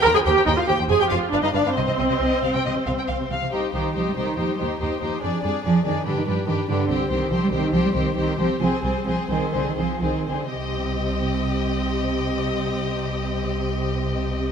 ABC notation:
X:1
M:4/4
L:1/16
Q:1/4=138
K:Cm
V:1 name="Violin section"
b a g2 e f g2 a g f2 d e d2 | c12- c2 z2 | c2 c2 c2 c2 c2 c2 c2 c2 | d2 d2 d2 d2 =B2 B2 B2 B2 |
c2 c2 c2 c2 c2 c2 c2 c2 | c2 c2 c2 c2 c2 c2 c2 c2 | e16- | e16 |]
V:2 name="Violin section"
[cg] [cg] [cg] [cg] [cg] z [cg] [cg] [ca] [ca] [ca] z [=Bf] [Bf] [Bf] [Bf] | [ce] [ce] [ce] [ce] e2 f g e2 f g f2 f2 | G2 G2 G2 G2 G2 G2 G2 G2 | A2 A2 A2 A2 G2 G2 G2 G2 |
G2 G2 G2 G2 G2 G2 G2 G2 | A2 A2 A2 A2 A2 A2 A2 A2 | G16- | G16 |]
V:3 name="Viola section"
B A G2 E F G2 A G F2 D E D2 | C12- C2 z2 | E2 E2 E2 E2 E2 E2 E2 E2 | D2 D2 D2 D2 D2 D2 D2 D2 |
C2 C2 C2 C2 C2 C2 C2 C2 | C2 C2 C2 C2 C2 C2 C2 C2 | C16- | C16 |]
V:4 name="Cello section" clef=bass
E,, E,, E,, E,, E,, z E,, E,, F,, F,, F,, z G,, G,, G,, G,, | C, C, C, C, C, z C, C, C, C, C, z C, C, C, C, | z2 E,2 F, G, E,2 F, G, E,2 E,2 F,2 | F,2 G,2 F,2 E,2 D, E, F,2 E,2 D,2 |
z2 E,2 F, G, E,2 F, G, E,2 E,2 F,2 | F,2 G,2 F,2 E,2 D, E, F,2 E,2 D,2 | C,16- | C,16 |]
V:5 name="Double bass section" clef=bass
E,, z E,, z E,, z E,, z F,,, z F,,, z G,,, z G,,, z | C,, z C,, z C,, z C,, z C,, z C,, z C,, z C,, z | C,,2 C,,2 C,,2 C,,2 E,,2 E,,2 E,,2 E,,2 | F,,2 F,,2 F,,2 F,,2 G,,2 G,,2 G,,2 G,,2 |
C,,2 C,,2 C,,2 C,,2 C,,2 C,,2 C,,2 C,,2 | C,,2 C,,2 C,,2 C,,2 C,,2 C,,2 C,,2 C,,2 | C,,16- | C,,16 |]